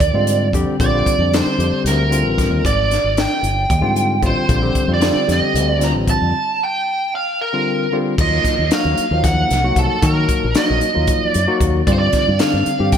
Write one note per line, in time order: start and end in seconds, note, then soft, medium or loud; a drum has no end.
0.00 0.11 D#2 medium
0.00 0.48 D5 medium
0.00 kick medium
0.00 closed hi-hat medium
0.14 0.53 G#2 medium
0.14 0.47 D3 medium
0.14 0.46 G3 medium
0.14 0.47 C4 medium
0.14 0.47 F4 medium
0.27 0.51 D5 medium
0.27 closed hi-hat medium
0.53 0.64 F2 medium
0.53 0.75 D3 medium
0.53 0.75 G3 medium
0.53 0.76 C4 medium
0.53 0.76 G4 loud
0.53 0.78 G5 medium
0.53 kick medium
0.53 closed hi-hat medium
0.79 1.01 A#1 medium
0.79 0.90 D3 medium
0.79 0.91 G3 medium
0.79 0.91 C4 medium
0.79 0.91 F4 medium
0.79 1.34 D5 medium
0.79 kick medium
0.79 closed hi-hat medium
0.93 1.15 D3 medium
0.93 1.15 G3 medium
0.93 1.15 C4 medium
0.93 1.15 F4 medium
1.06 kick medium
1.06 closed hi-hat medium
1.19 1.40 F2 medium
1.19 1.31 D3 medium
1.19 1.31 G3 medium
1.19 1.31 C4 medium
1.19 1.31 D4 medium
1.33 1.55 D3 medium
1.33 1.55 G3 medium
1.33 1.55 C4 medium
1.33 1.55 D4 medium
1.33 1.82 C5 medium
1.33 snare medium
1.33 closed hi-hat medium
1.46 muted fingered electric bass stroke soft
1.58 1.69 F2 medium
1.58 2.02 D3 medium
1.58 2.03 G3 medium
1.58 2.03 C4 medium
1.58 2.03 G4 medium
1.58 closed hi-hat medium
1.72 muted fingered electric bass stroke soft
1.84 2.24 D2 medium
1.84 2.65 A#4 medium
1.84 snare soft
1.84 closed hi-hat medium
2.10 2.64 D3 medium
2.10 2.64 G3 medium
2.10 2.64 C4 medium
2.10 2.64 F4 medium
2.10 closed hi-hat medium
2.24 2.46 A1 medium
2.38 kick medium
2.38 snare soft
2.38 closed hi-hat medium
2.50 2.61 D#2 medium
2.65 2.97 G#1 medium
2.65 3.19 D5 medium
2.65 kick medium
2.65 closed hi-hat medium
2.91 snare soft
2.91 closed hi-hat medium
3.04 3.25 G#1 medium
3.17 4.20 G5 medium
3.17 snare medium
3.17 closed hi-hat medium
3.43 3.64 G1 medium
3.43 closed hi-hat medium
3.70 3.81 D#2 medium
3.70 kick medium
3.70 closed hi-hat medium
3.81 4.24 G#2 medium
3.81 4.15 D3 medium
3.81 4.15 G3 medium
3.81 4.15 C4 medium
3.81 4.15 F4 loud
3.96 closed hi-hat medium
4.22 4.33 A1 medium
4.22 4.44 D3 medium
4.22 4.44 G3 medium
4.22 4.44 C4 medium
4.22 4.45 F4 medium
4.22 kick medium
4.22 closed hi-hat medium
4.26 4.92 C5 medium
4.48 4.70 A#1 medium
4.48 4.60 D3 medium
4.48 4.60 G3 medium
4.48 4.60 C4 medium
4.48 4.60 F4 medium
4.48 kick medium
4.48 closed hi-hat medium
4.62 4.84 D3 medium
4.62 4.84 G3 medium
4.62 4.84 C4 medium
4.62 4.84 G4 medium
4.75 kick medium
4.75 closed hi-hat medium
4.87 5.10 F2 medium
4.87 4.99 D3 medium
4.87 4.99 G3 medium
4.87 4.99 C4 medium
4.87 5.00 F4 medium
4.94 5.28 D5 medium
5.00 5.23 D3 medium
5.00 5.23 G3 medium
5.00 5.23 C4 medium
5.00 5.23 F4 medium
5.00 snare loud
5.00 closed hi-hat medium
5.15 muted fingered electric bass stroke soft
5.27 5.39 F2 medium
5.27 5.71 D3 medium
5.27 5.71 G3 medium
5.27 5.72 C4 medium
5.27 5.72 G4 medium
5.27 snare soft
5.27 closed hi-hat medium
5.32 5.71 D#5 medium
5.41 muted fingered electric bass stroke soft
5.54 5.94 D2 medium
5.54 closed hi-hat medium
5.71 5.84 D5 medium
5.79 6.33 D3 medium
5.79 6.33 G3 medium
5.79 6.33 C4 medium
5.79 6.33 F4 medium
5.79 snare soft
5.79 closed hi-hat medium
5.84 5.91 A#5 medium
5.94 6.16 A1 medium
6.08 6.63 A5 medium
6.08 kick medium
6.08 closed hi-hat medium
6.22 6.32 F2 medium
6.64 7.15 G5 medium
7.15 7.39 F5 medium
7.41 7.96 A#4 medium
7.53 7.85 D3 medium
7.53 7.86 G3 medium
7.53 7.86 C4 medium
7.53 7.86 F4 medium
7.92 8.14 D3 medium
7.92 8.14 G3 medium
7.92 8.14 C4 medium
7.92 8.14 F4 medium
8.18 8.40 D#2 medium
8.18 8.62 F#3 medium
8.18 8.62 A#3 medium
8.18 8.63 D#4 medium
8.18 8.63 F4 medium
8.18 8.69 D#5 medium
8.18 kick loud
8.18 crash medium
8.44 muted fingered electric bass stroke soft
8.44 kick medium
8.44 snare soft
8.44 closed hi-hat medium
8.59 8.69 D#2 medium
8.71 9.04 F#3 medium
8.71 9.04 A#3 medium
8.71 9.04 D#4 medium
8.71 9.05 F#4 medium
8.71 9.24 F5 medium
8.71 snare loud
8.71 closed hi-hat medium
8.85 8.96 D#2 medium
8.98 muted fingered electric bass stroke soft
8.98 closed hi-hat medium
9.11 9.43 D#2 medium
9.11 9.55 F3 medium
9.11 9.54 F#3 medium
9.11 9.55 A#3 medium
9.11 9.55 D#4 medium
9.24 9.79 F#5 medium
9.24 kick loud
9.24 snare soft
9.24 closed hi-hat medium
9.51 9.72 C2 medium
9.51 snare soft
9.51 closed hi-hat medium
9.64 9.96 F#3 medium
9.64 9.96 A#3 medium
9.64 9.97 D#4 medium
9.64 9.97 F#4 medium
9.76 9.87 C2 medium
9.76 10.04 A4 medium
9.76 kick medium
9.76 closed hi-hat medium
10.02 10.24 D#3 medium
10.02 10.46 F#3 medium
10.02 10.46 A#3 medium
10.02 10.46 D#4 medium
10.02 10.46 F#4 medium
10.02 10.58 A#4 medium
10.02 kick medium
10.02 closed hi-hat medium
10.29 kick medium
10.29 closed hi-hat medium
10.44 10.54 A#1 medium
10.55 10.88 F#3 medium
10.55 10.88 A#3 medium
10.55 10.88 D#4 medium
10.55 10.88 F#4 medium
10.55 11.24 D#5 medium
10.55 snare loud
10.55 closed hi-hat medium
10.70 10.80 A#1 medium
10.81 closed hi-hat medium
10.94 11.07 D#2 medium
10.94 11.38 F#3 medium
10.94 11.38 A#3 medium
10.94 11.39 D#4 medium
10.94 11.39 F4 medium
11.07 kick loud
11.07 closed hi-hat medium
11.23 11.58 D5 medium
11.23 muted fingered electric bass stroke soft
11.34 11.46 F#2 medium
11.34 closed hi-hat medium
11.47 11.80 F#3 medium
11.47 11.81 A#3 medium
11.47 11.81 D#4 medium
11.47 11.81 F#4 medium
11.61 11.82 D#2 medium
11.61 kick medium
11.61 closed hi-hat medium
11.87 12.09 G2 medium
11.87 12.31 D3 medium
11.87 12.31 G3 medium
11.87 12.31 C4 medium
11.87 12.31 F4 medium
11.87 11.92 D5 medium
11.87 kick medium
11.87 closed hi-hat medium
11.93 11.99 C5 medium
11.99 12.40 D5 medium
12.13 muted fingered electric bass stroke soft
12.13 kick medium
12.13 snare soft
12.13 closed hi-hat medium
12.28 12.39 G2 medium
12.39 12.73 D3 medium
12.39 12.73 G3 medium
12.39 12.73 C4 medium
12.39 12.73 D4 medium
12.39 12.89 F5 medium
12.39 snare loud
12.39 closed hi-hat medium
12.54 12.64 G2 medium
12.66 muted fingered electric bass stroke soft
12.66 closed hi-hat medium
12.79 12.98 G2 medium
12.79 12.98 D3 medium
12.79 12.98 G3 medium
12.79 12.98 C4 medium
12.79 12.98 G4 medium
12.92 12.98 G5 medium
12.92 kick medium
12.92 closed hi-hat medium